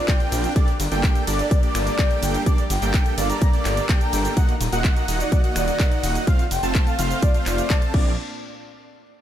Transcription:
Already playing: A#3 C4 D4 D5
0.08 C4 D4 F4 A#4 G5, kick, clap, closed hi-hat, cabasa
0.20 closed hi-hat, cabasa
0.32 A#1, open hi-hat, ride, cabasa
0.44 closed hi-hat, cabasa
0.56 G3 A#3 D4 G4 A4 D5, kick, closed hi-hat, cabasa
0.68 closed hi-hat, cabasa
0.80 G1, open hi-hat, ride, cabasa
0.92 G1 A#3 D4 G4 A4 G5, closed hi-hat, cabasa
1.04 kick, clap, closed hi-hat, cabasa
1.15 closed hi-hat, cabasa
1.27 G1 A#3 D4 G4 A4 D5, open hi-hat, ride, cabasa
1.39 D5, closed hi-hat, cabasa
1.51 D5, kick, closed hi-hat, cabasa
1.63 A#3 D4 G4 A4 D5, closed hi-hat, cabasa
1.75 G1 D5, finger snap, open hi-hat, ride, cabasa
1.87 closed hi-hat, cabasa
1.99 A#3 D4 G4 A4 G5, kick, clap, closed hi-hat, cabasa
2.11 closed hi-hat, cabasa
2.23 G1, open hi-hat, ride, cabasa
2.34 closed hi-hat, cabasa
2.46 A#3 D4 G4 A4 D5, kick, closed hi-hat, cabasa
2.58 closed hi-hat, cabasa
2.70 G1 G5, open hi-hat, ride, cabasa
2.82 G1 A#3 D4 G4 A4 G5, closed hi-hat, cabasa
2.94 kick, clap, closed hi-hat, cabasa
3.06 closed hi-hat, cabasa
3.18 G1 A#3 D4 G4 A4 D5 F5, open hi-hat, ride, cabasa
3.30 A#5, closed hi-hat, cabasa
3.42 A#5, kick, closed hi-hat, cabasa
3.53 A#3 D4 G4 A4 D5, closed hi-hat, cabasa
3.65 G1, finger snap, clap, open hi-hat, ride, cabasa
3.77 closed hi-hat, cabasa
3.89 A#3 D4 G4 A4 G5, kick, clap, closed hi-hat, cabasa
4.01 A#5, closed hi-hat, cabasa
4.13 G1, open hi-hat, ride, cabasa
4.25 closed hi-hat, cabasa
4.37 D#3 A#3 D#4 F#4 D#5 F#5, kick, closed hi-hat, cabasa
4.49 closed hi-hat, cabasa
4.61 D#1, open hi-hat, ride, cabasa
4.72 D#1 A#3 D#4 F#4 D#5 F#5, closed hi-hat, cabasa
4.84 kick, clap, closed hi-hat, cabasa
4.96 closed hi-hat, cabasa
5.08 D#1 A#3 D#4 F#4 D#5 F#5, open hi-hat, ride, cabasa
5.20 D5, closed hi-hat, cabasa
5.32 D5, kick, closed hi-hat, cabasa
5.44 A#3 D#4 F#4 D#5 F#5, closed hi-hat, cabasa
5.56 D#1 D5, finger snap, open hi-hat, ride, cabasa
5.68 closed hi-hat, cabasa
5.80 A#3 D#4 F#4 D#5 F#5, kick, clap, closed hi-hat, cabasa
5.92 closed hi-hat, cabasa
6.03 D#1, open hi-hat, ride, cabasa
6.15 closed hi-hat, cabasa
6.27 A3 C4 F4 C5 F5, kick, closed hi-hat, cabasa
6.39 closed hi-hat, cabasa
6.51 F1 G5, open hi-hat, ride, cabasa
6.63 F1 A3 C4 F4 C5 A5, closed hi-hat, cabasa
6.75 kick, clap, closed hi-hat, cabasa
6.87 F5, closed hi-hat, cabasa
6.99 F1 A3 C4 F4 C5 F5, open hi-hat, ride, cabasa
7.11 closed hi-hat, cabasa
7.22 D5, kick, closed hi-hat, cabasa
7.34 A3 C4 F4 C5 F5, closed hi-hat, cabasa
7.46 F1 D5, finger snap, clap, open hi-hat, ride, cabasa
7.58 closed hi-hat, cabasa
7.70 A3 C4 F4 C5 A5, kick, clap, closed hi-hat, cabasa
7.82 closed hi-hat, cabasa
7.94 A#1 A#2 A#3 C4 D4 F4 A#4 D5, kick, crash

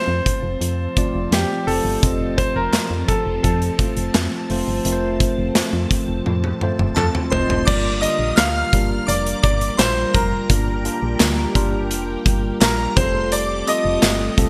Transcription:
Already playing: F3 A3 C4 F4 C5 A5
0.08 F2
0.26 kick, closed hi-hat
0.43 F1
0.61 F2, closed hi-hat
0.97 A3 C4 F4 D5, kick, closed hi-hat
1.14 F1
1.32 F2 G4, snare, closed hi-hat
1.67 F1 A3 C4 F4 G4 A4, open hi-hat
1.84 G1
2.03 F1 F3 C4 F4 D#5, kick, closed hi-hat
2.38 C5, kick, closed hi-hat
2.55 F1 A#4
2.73 F2, snare, clap, closed hi-hat
2.90 F2
3.08 A4, kick, closed hi-hat
3.26 F1
3.43 F2 A4, kick, closed hi-hat
3.62 closed hi-hat
3.79 A3 C4 F4 C5, kick, closed hi-hat
3.97 F1, closed hi-hat
4.14 F2, snare, clap, closed hi-hat
4.50 F1 A3 C4 F4 C5, open hi-hat
4.68 G1
4.85 F1 A3 C4 F4 A#4, closed hi-hat
4.92 C5
5.20 kick, closed hi-hat
5.38 F1
5.55 F2, snare, clap, closed hi-hat
5.73 F2
5.91 kick, closed hi-hat
6.08 F1
6.26 F2, high tom
6.44 high tom
6.61 A3 C4 F4 C5, mid tom
6.79 F1, mid tom
6.95 F2 A4 A5, clap, mid tom
7.15 mid tom
7.30 F1 A3 C4 F4 C5 D#5 C6, floor tom
7.49 F1, floor tom
7.65 G1 G3 A#3 D4 F4 A#4 D5 D6, kick, crash
8.01 D3 G3 A#3 F4 A#4 D#5 D#6, closed hi-hat
8.19 A#1
8.36 D2 F5 F6, snare, clap, closed hi-hat, tambourine
8.73 G1 G3 A#3 D4 F4 A#4, kick, closed hi-hat
9.07 F1 D5 D6, closed hi-hat
9.26 closed hi-hat
9.43 G1 D5 D6, kick, closed hi-hat
9.61 closed hi-hat
9.77 A#1 C5 C6, snare, clap, closed hi-hat, tambourine
10.14 F1 A#4 A#5, kick, closed hi-hat
10.49 G1 G3 A#3 D4 F4 G4 A#4, kick, closed hi-hat
10.84 G3 A#3 D4 F4 A#4, closed hi-hat
11.02 A#1
11.20 D2, snare, clap, closed hi-hat, tambourine
11.55 G1 G3 A#3 D4 F4 A#4, kick, closed hi-hat
11.91 F1, closed hi-hat
12.25 G1, kick, closed hi-hat
12.60 A#1 A#4 A#5, snare, clap, closed hi-hat, tambourine
12.96 F1 G3 A3 C4 F4 G4 G#4 C5 C6, kick, closed hi-hat
13.04 A4
13.32 D5 D6, closed hi-hat
13.67 G3 A3 C4 F4 A4 D#5 D#6, closed hi-hat
13.85 F1
14.03 G1, snare, clap, closed hi-hat, tambourine
14.37 C2 G3 A3 C4 F4 A4, kick, closed hi-hat

